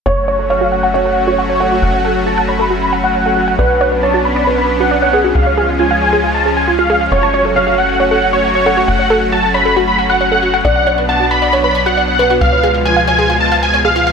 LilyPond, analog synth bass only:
\new Staff \with { instrumentName = "Analog synth bass" } { \clef bass \time 4/4 \key fis \minor \tempo 4 = 136 fis,,1 | fis,,1 | b,,1 | cis,1 |
fis,,1 | fis,,1 | b,,1 | cis,1 | }